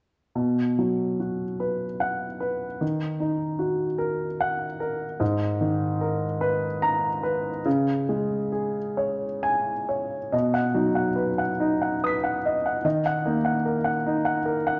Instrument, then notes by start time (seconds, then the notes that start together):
grand piano
0.35 B2
0.79 F#3
1.20 F#4
1.60 B4
2.00 F#5
2.40 B4
2.81 D#3
3.20 D#4
3.59 F#4
3.98 A#4
4.41 F#5
4.80 A#4
5.20 G#2
5.61 D#3
6.01 A#4
6.41 B4
6.82 A#5
7.23 B4
7.65 C#3
8.09 G#3
8.52 G#4
8.97 C#5
9.43 G#5
9.89 C#5
10.32 B2 D#5
10.54 F#5
10.74 F#3 D#4
10.95 F#5
11.16 B4
11.38 F#5
11.60 D#4
11.82 F#5
12.04 B4 D#6 B6
12.24 F#5
12.45 D#5
12.66 F#5
12.85 D#3 D#5
13.06 F#5
13.25 A#3 D#4
13.45 F#5
13.65 A#4
13.84 F#5
14.07 D#4
14.25 F#5
14.45 A#4
14.67 F#5